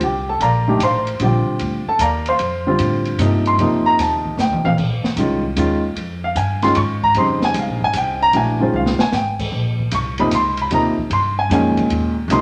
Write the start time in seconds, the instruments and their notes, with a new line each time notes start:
0.01 upright bass C2, grand piano G4 G5, ride
0.29 grand piano A4 A5
0.40 upright bass A#1, grand piano A#4 D5 F5 A#5, hi-hat pedal, ride
0.68 grand piano D#3 A3 D4 G4
0.79 upright bass A1, hi-hat pedal, ride
0.83 grand piano C5 F5 C6
1.07 ride
1.20 upright bass A#1, grand piano D3 G3 C4 F4 G4 G5, ride
1.47 muted upright bass stroke
1.59 upright bass D2, ride
1.86 grand piano A4 A5, muted upright bass stroke
1.99 upright bass D#2, grand piano A#4 D5 F5 A#5, hi-hat pedal, ride
2.26 grand piano C5 F5 C6, ride
2.39 upright bass F2, ride
2.67 grand piano D3 G3 C4 F4
2.79 upright bass A2, hi-hat pedal, ride
3.05 ride
3.18 upright bass G2, grand piano C3 F3 A#3 D#4, hi-hat pedal, ride
3.46 grand piano C6, ride
3.58 upright bass F2, grand piano C3 F3 A#3 D#4, ride
3.86 grand piano A#5
3.98 upright bass D#2, grand piano A5, snare, hi-hat pedal, ride
4.25 kick
4.38 upright bass D2, grand piano G5, snare, hi-hat pedal
4.51 upright bass C2, mid tom
4.64 upright bass A#1, grand piano F5, mid tom
4.77 upright bass A#1, kick, crash
5.03 muted upright bass stroke, snare
5.16 upright bass C2, grand piano D#3 G#3 C#4 F4, hi-hat pedal, ride
5.44 kick
5.56 upright bass D#2, grand piano D#3 G#3 C#4 F4, hi-hat pedal, ride
5.95 upright bass F2, ride
6.24 grand piano F5
6.36 upright bass G2, grand piano G#5, hi-hat pedal, ride
6.62 grand piano D#3 G#3 C#4 F4 C6, snare, ride
6.75 upright bass G#2, grand piano C#6, ride
7.02 grand piano A#5, kick
7.14 upright bass F2, grand piano C#3 G3 C4 D#4 C6, ride
7.42 grand piano G#5, snare
7.54 upright bass C#2, hi-hat pedal, ride
7.59 grand piano F5
7.67 upright bass A#1
7.80 upright bass G#1
7.84 grand piano G#5
7.93 upright bass C2, grand piano G5, hi-hat pedal, ride
8.22 grand piano A#5
8.33 upright bass A#1, grand piano E3 A3 D4 F#4 G#5, ride
8.60 grand piano D#3 G#3 C#4 F4 C5
8.74 upright bass C2, grand piano F5
8.86 snare
8.99 grand piano G#5, muted upright bass stroke, snare
9.12 upright bass G#1, grand piano G5, snare, hi-hat pedal
9.39 kick, crash
9.52 upright bass A#1
9.79 kick
9.91 upright bass C2, grand piano C#6, hi-hat pedal, ride
10.18 grand piano C3 F3 A#3 D#4 B5, ride
10.31 upright bass C#2, grand piano C6, hi-hat pedal, ride
10.57 ride
10.62 grand piano B5
10.71 upright bass D#2, grand piano C3 F3 A#3 D#4 A#5, ride
10.98 muted upright bass stroke, kick
11.10 upright bass G2, grand piano C6, ride
11.39 grand piano G#5
11.50 upright bass F2, grand piano A#2 D#3 G#3 C#4 G#5, hi-hat pedal, ride
11.77 kick, ride
11.90 upright bass D#2, ride
12.28 upright bass C#2, grand piano C3 F3 A#3 D#4, hi-hat pedal, ride
12.33 grand piano C6